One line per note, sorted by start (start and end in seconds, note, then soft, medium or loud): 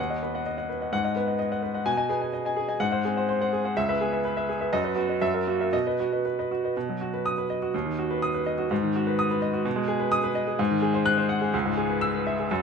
0.00 0.89 D#2 medium
0.10 0.21 D#5 soft
0.10 0.21 F#5 medium
0.23 0.41 B3 soft
0.23 0.41 B4 soft
0.34 0.45 D#5 soft
0.34 0.45 F#5 soft
0.46 0.56 D#5 soft
0.58 0.68 D#5 soft
0.58 0.68 F#5 soft
0.69 0.88 B4 soft
0.81 0.92 D#5 soft
0.81 0.91 F#5 soft
0.92 1.83 G#2 medium
0.92 1.03 F#5 medium
1.04 1.15 D#5 soft
1.04 1.15 F#5 medium
1.16 1.35 B3 soft
1.16 1.35 B4 soft
1.27 1.37 D#5 soft
1.27 1.38 F#5 soft
1.39 1.50 D#5 medium
1.52 1.62 D#5 soft
1.52 1.62 F#5 soft
1.63 1.81 B4 soft
1.74 1.85 D#5 soft
1.74 1.85 F#5 soft
1.86 2.77 B2 medium
1.86 1.96 G#5 medium
1.97 2.08 D#5 medium
1.97 2.08 G#5 medium
2.09 2.29 B3 soft
2.09 2.28 G#4 medium
2.21 2.32 D#5 soft
2.21 2.32 G#5 soft
2.33 2.44 D#5 medium
2.45 2.56 D#5 soft
2.45 2.56 G#5 medium
2.56 2.75 G#4 medium
2.68 2.79 D#5 soft
2.68 2.79 G#5 medium
2.80 3.72 G#2 medium
2.80 2.91 F#5 medium
2.92 3.03 C5 medium
2.92 3.03 F#5 medium
3.05 3.24 C4 medium
3.05 3.23 G#4 medium
3.17 3.27 C5 soft
3.17 3.27 F#5 medium
3.29 3.40 C5 medium
3.41 3.51 C5 medium
3.41 3.51 F#5 medium
3.53 3.71 G#4 medium
3.65 3.75 C5 soft
3.65 3.75 F#5 medium
3.76 4.70 C#2 medium
3.76 3.88 E5 medium
3.89 3.99 B4 medium
3.89 3.99 E5 medium
4.01 4.20 B3 medium
4.01 4.20 G#4 medium
4.13 4.23 B4 soft
4.13 4.23 E5 medium
4.25 4.35 B4 medium
4.37 4.47 B4 medium
4.37 4.47 E5 medium
4.49 4.68 G#4 medium
4.61 4.71 B4 soft
4.61 4.71 E5 medium
4.73 5.20 F#2 medium
4.73 4.83 D#5 medium
4.84 4.95 B4 soft
4.84 4.95 D#5 medium
4.95 5.16 B3 soft
4.95 5.16 F#4 medium
5.09 5.20 B4 soft
5.09 5.20 D#5 soft
5.21 5.71 F#2 medium
5.21 5.33 E5 medium
5.34 5.46 A#4 soft
5.34 5.46 E5 soft
5.47 5.68 A#3 soft
5.47 5.68 F#4 medium
5.60 5.72 A#4 soft
5.60 5.72 E5 soft
5.73 6.73 B2 medium
5.73 5.85 D#5 medium
5.87 5.98 B4 medium
5.87 5.98 D#5 medium
6.00 6.20 B3 medium
6.00 6.20 F#4 soft
6.12 6.23 B4 soft
6.12 6.24 D#5 soft
6.25 6.37 B4 soft
6.39 6.50 B4 soft
6.39 6.50 D#5 soft
6.51 6.71 F#4 medium
6.64 6.75 B4 soft
6.64 6.75 D#5 soft
6.77 7.71 B2 medium
6.89 7.08 F#3 soft
7.01 7.20 F#4 soft
7.14 7.32 B4 soft
7.26 7.44 D#6 medium
7.38 7.57 B4 soft
7.50 7.69 D#5 medium
7.62 7.74 F#4 soft
7.74 8.68 D#2 medium
7.86 8.05 D#3 soft
7.98 8.17 F#4 medium
8.11 8.30 B4 medium
8.22 8.42 D#6 medium
8.34 8.54 B4 medium
8.46 8.66 D#5 medium
8.58 8.70 F#4 medium
8.71 9.63 G#2 medium
8.83 9.02 D#3 medium
8.96 9.14 F#4 medium
9.07 9.26 B4 medium
9.19 9.38 D#6 medium
9.31 9.49 B4 medium
9.42 9.61 D#5 medium
9.53 9.65 F#4 medium
9.65 10.56 B2 medium
9.76 9.95 G#3 medium
9.88 10.07 G#4 medium
10.00 10.19 B4 medium
10.12 10.31 D#6 loud
10.24 10.43 B4 medium
10.35 10.54 D#5 medium
10.47 10.59 G#4 medium
10.59 11.51 G#2 medium
10.71 10.90 D#3 medium
10.82 11.01 G#4 medium
10.94 11.13 C5 medium
11.06 11.25 F#6 loud
11.18 11.37 C5 medium
11.29 11.48 F#5 medium
11.41 11.53 G#4 medium
11.54 12.47 C#2 medium
11.66 11.85 G#2 medium
11.77 11.96 G#4 medium
11.90 12.09 B4 medium
12.01 12.21 E6 medium
12.14 12.33 B4 medium
12.27 12.46 E5 medium
12.39 12.51 G#4 soft
12.51 12.62 F#2 medium